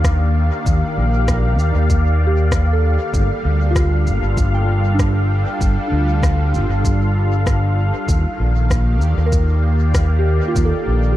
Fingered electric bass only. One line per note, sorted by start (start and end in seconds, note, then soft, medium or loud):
0.00 0.48 D#2 medium
0.66 0.80 D#2 medium
0.97 1.59 A#1 medium
1.59 1.73 D#2 medium
1.75 2.95 D#2 medium
3.14 3.27 G1 medium
3.45 4.08 D2 medium
4.07 4.20 G1 medium
4.22 5.43 G1 medium
5.61 5.75 G1 medium
5.92 6.56 D2 medium
6.54 6.68 G1 medium
6.69 7.90 G1 medium
8.09 8.22 D#2 loud
8.40 9.02 A#1 medium
9.02 9.15 D#2 medium
9.17 10.38 D#2 medium
10.56 10.70 D#2 loud
10.88 11.17 A#1 loud